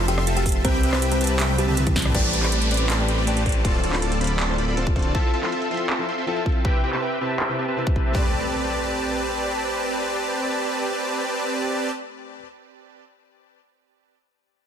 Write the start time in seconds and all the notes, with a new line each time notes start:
Already playing: F1
0.08 C4 F4 G4 A4 E5 G5 C6, closed hi-hat
0.17 C4 F4 A4 E5 C6, cross-stick
0.27 C4 F4 A4 E5 A5, closed hi-hat
0.37 G4 F5 G5, closed hi-hat
0.46 C4 F4 A4 E5 A5, kick, closed hi-hat, open hi-hat
0.52 C6, closed hi-hat
0.64 C2 C4 G4 B4 C5 E5 G5, kick, closed hi-hat
0.74 B5
0.83 C4 G4 B4 E5 G5, closed hi-hat
0.93 C4 G4 B4 C5 E5 A5, cross-stick, clap
1.02 C4 G4 B4 E5 G5, closed hi-hat
1.12 C4 C5 E5, closed hi-hat
1.21 C4 G4 B4 C5 E5 A5, closed hi-hat
1.24 closed hi-hat
1.27 B5, closed hi-hat
1.39 C4 G4 B4 E5 G5, clap, closed hi-hat, high tom
1.49 B5, high tom
1.58 G3 C4 G4 B4 E5 A5, closed hi-hat
1.68 C4 G4 B4 C5 E5 A5, mid tom
1.77 G4, closed hi-hat, mid tom
1.86 E3 C4 E4 G4 B4 E5 A5, kick, closed hi-hat, mid tom
1.96 C5, kick, snare, closed hi-hat, open hi-hat
2.02 C4 G4 B4 E5 A5 B5, cross-stick, closed hi-hat, mid tom
2.14 A1 A3 C4 G4 B4 C5 D5 A5, kick, closed hi-hat, crash, downlifter
2.33 C4 G4 B4 D5 A5, closed hi-hat
2.42 A3 C4 G4 B4 C5 D5 B5, clap
2.52 C4 G4 B4 D5 A5, closed hi-hat
2.62 closed hi-hat
2.70 A3 C4 G4 B4 C5 D5 B5, closed hi-hat
2.74 closed hi-hat
2.77 closed hi-hat
2.90 C4 G4 B4 D5 A5, clap, closed hi-hat
2.98 A3 G4 B4 C5 D5
3.08 C4 G4 B4 D5 B5, closed hi-hat
3.18 C4 G4 B4 D5 B5
3.26 A3 C4 G4 B4 C5 D5 A5, closed hi-hat
3.37 closed hi-hat
3.45 A3 C4 G4 B4 C5 D5 A5, kick, closed hi-hat
3.49 closed hi-hat
3.52 closed hi-hat
3.64 D1 D3 A3 C4 F4 A4 C5 D5 A5, kick, closed hi-hat
3.83 C4 F4 A4 D5 A5, closed hi-hat
3.92 D3 A3 C4 F4 A4 C5 D5 B5, clap
4.02 C4 F4 A4 D5 A5, closed hi-hat
4.12 closed hi-hat
4.20 D3 A3 C4 F4 A4 C5 D5 B5, closed hi-hat
4.24 closed hi-hat
4.27 closed hi-hat
4.40 C4 F4 A4 D5 A5, clap, closed hi-hat
4.48 D3 A3 F4 C5
4.58 C4 F4 A4 D5 B5, closed hi-hat
4.68 C4 F4 A4 D5 B5
4.76 D3 A3 C4 F4 A4 C5 D5 A5, closed hi-hat
4.87 kick, closed hi-hat
4.94 D3 A3 C4 F4 A4 C5 D5 A5, kick, closed hi-hat
4.99 closed hi-hat
5.02 closed hi-hat
5.13 F3 C4 E4 F4 A4 E5 A5, kick, closed hi-hat
5.33 C4 F4 A4 E5 A5, closed hi-hat
5.42 F3 C4 E4 F4 A4 E5 C6, clap
5.52 C4 F4 A4 E5 A5, closed hi-hat
5.62 closed hi-hat
5.70 F3 C4 E4 F4 A4 E5 C6, closed hi-hat
5.74 closed hi-hat
5.77 closed hi-hat
5.90 C4 F4 A4 E5 A5, clap, closed hi-hat
5.98 F3 C4 E4 A4
6.08 C4 F4 A4 E5 C6, closed hi-hat
6.18 C4 F4 A4 E5 C6
6.26 F3 C4 E4 F4 A4 E5 A5, closed hi-hat
6.37 closed hi-hat
6.45 F3 C4 E4 F4 A4 E5 A5, kick, closed hi-hat
6.49 closed hi-hat
6.52 closed hi-hat
6.64 C3 C4 E4 G4 B4 E5 G5, kick, closed hi-hat
6.83 C4 G4 B4 E5 G5, closed hi-hat
6.92 C3 C4 E4 G4 B4 E5 A5, clap
7.02 C4 G4 B4 E5 G5, closed hi-hat
7.12 closed hi-hat
7.20 C3 C4 E4 G4 B4 E5 A5, closed hi-hat
7.24 closed hi-hat
7.27 closed hi-hat
7.40 C4 G4 B4 E5 G5, clap, closed hi-hat
7.48 C3 C4 E4 B4
7.59 C4 G4 B4 E5 A5, closed hi-hat
7.68 C4 G4 B4 E5 A5
7.76 C3 C4 E4 B4, closed hi-hat
7.87 C4 G4 B4 E5 A5, kick
7.95 C3 C4 E4 B4, kick
8.06 C4 G4 B4 E5 A5
8.12 A3 C4 G4 B4 D5 A5, kick, impact
8.16 C4 D5